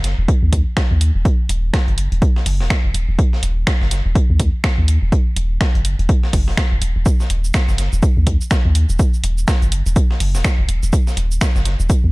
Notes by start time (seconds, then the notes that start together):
Already playing: F#1
0.04 snare, closed hi-hat, open hi-hat
0.19 D#1
0.28 kick, closed hi-hat
0.43 D#2
0.53 kick, closed hi-hat, open hi-hat
0.77 finger snap, kick, snare, closed hi-hat
0.91 D#2
1.01 closed hi-hat, open hi-hat
1.15 D#1
1.25 kick, closed hi-hat
1.49 D#1, closed hi-hat, open hi-hat
1.74 finger snap, kick, snare, closed hi-hat
1.88 F#1, closed hi-hat
1.98 closed hi-hat, open hi-hat
2.12 D#1, closed hi-hat
2.22 kick, closed hi-hat
2.36 snare
2.46 F#1, open hi-hat
2.60 D#1, snare
2.70 finger snap, kick, snare, closed hi-hat
2.85 F1
2.94 D#1, closed hi-hat, open hi-hat
3.09 D#1
3.19 kick, closed hi-hat
3.33 snare
3.43 D#1, closed hi-hat, open hi-hat
3.67 finger snap, kick, snare, closed hi-hat
3.81 F#1, snare
3.91 snare, closed hi-hat, open hi-hat
4.06 D#1
4.15 kick, closed hi-hat
4.30 D#2
4.40 kick, closed hi-hat, open hi-hat
4.64 finger snap, kick, snare, closed hi-hat
4.78 D#2
4.88 closed hi-hat, open hi-hat
5.02 D#1
5.12 kick, closed hi-hat
5.36 D#1, closed hi-hat, open hi-hat
5.61 finger snap, kick, snare, closed hi-hat
5.75 F#1, closed hi-hat
5.85 closed hi-hat, open hi-hat
5.99 D#1, closed hi-hat
6.09 kick, closed hi-hat
6.23 snare
6.33 F#1, kick, open hi-hat
6.48 D#1, snare
6.57 finger snap, kick, snare, closed hi-hat
6.72 F1
6.82 D#1, closed hi-hat, open hi-hat
6.96 D#1
7.06 kick, closed hi-hat, cabasa
7.20 snare, cabasa
7.30 D#1, closed hi-hat, open hi-hat
7.44 cabasa
7.54 finger snap, kick, snare, closed hi-hat, cabasa
7.69 F#1, snare, cabasa
7.78 snare, closed hi-hat, open hi-hat
7.93 D#1, cabasa
8.03 kick, closed hi-hat, cabasa
8.17 D#2
8.27 kick, closed hi-hat, open hi-hat
8.41 cabasa
8.51 finger snap, kick, snare, closed hi-hat, cabasa
8.65 D#2
8.75 closed hi-hat, open hi-hat
8.89 D#1, cabasa
8.99 kick, closed hi-hat, cabasa
9.14 cabasa
9.24 D#1, closed hi-hat, open hi-hat
9.38 cabasa
9.48 finger snap, kick, snare, closed hi-hat, cabasa
9.62 F#1, closed hi-hat, cabasa
9.72 closed hi-hat, open hi-hat
9.86 D#1, closed hi-hat, cabasa
9.96 kick, closed hi-hat, cabasa
10.11 snare
10.20 F#1, open hi-hat
10.35 D#1, snare, cabasa
10.45 finger snap, kick, snare, closed hi-hat, cabasa
10.59 F1
10.69 D#1, closed hi-hat, open hi-hat
10.83 D#1, cabasa
10.93 kick, closed hi-hat, cabasa
11.07 snare, cabasa
11.17 D#1, closed hi-hat, open hi-hat
11.31 cabasa
11.41 finger snap, kick, snare, closed hi-hat, cabasa
11.56 F#1, snare, cabasa
11.65 snare, closed hi-hat, open hi-hat
11.80 D#1, cabasa
11.90 kick, closed hi-hat, cabasa
12.04 D#2